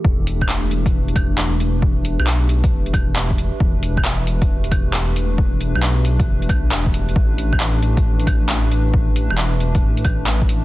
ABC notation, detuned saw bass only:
X:1
M:4/4
L:1/16
Q:"Swing 16ths" 1/4=135
K:Em
V:1 name="Detuned saw bass" clef=bass
E,,,16- | E,,,3 B,,,4- B,,, E,,,2 E,,,4- E,,, z | E,,,16- | E,,,3 B,,,4- B,,, E,,,2 B,,,2 E,,,4 |
A,,,16- | A,,,3 E,,,4- E,,, A,,,2 A,,,4- A,,, z |]